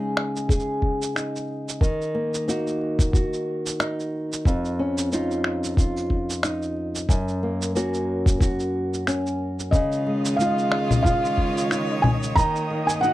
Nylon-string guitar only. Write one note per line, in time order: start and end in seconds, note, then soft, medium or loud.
0.00 1.82 C#3 medium
0.00 1.90 G#3 medium
0.00 1.15 D#4 medium
0.00 0.49 G#4 medium
0.50 1.89 G#4 medium
1.15 2.48 D#4 medium
1.81 4.49 D#3 medium
2.15 2.46 A#3 medium
2.48 4.53 A#3 medium
2.48 3.79 D#4 medium
2.48 3.13 F#4 medium
3.14 4.53 F#4 medium
3.80 4.82 D#4 medium
4.46 7.09 F2 medium
4.79 5.12 C#4 medium
5.12 7.43 C#4 medium
5.12 6.43 D#4 medium
5.12 5.77 F4 medium
5.78 7.17 F4 medium
6.44 7.17 D#4 medium
7.09 9.73 F#2 medium
7.43 7.74 A#3 medium
7.75 9.80 A#3 medium
7.75 9.07 C#4 medium
7.75 8.41 F#4 medium
8.42 9.81 F#4 medium
9.08 10.40 C#4 medium
9.73 12.37 C#3 medium
10.06 10.38 G#3 medium
10.40 12.44 G#3 medium
10.40 11.71 D#4 medium
10.40 11.04 F4 medium
11.05 12.44 F4 medium
11.71 13.04 D#4 medium
12.38 13.13 D#3 medium
12.70 13.02 A#3 medium
13.03 13.13 A#3 medium
13.03 13.13 D#4 medium
13.03 13.13 F#4 medium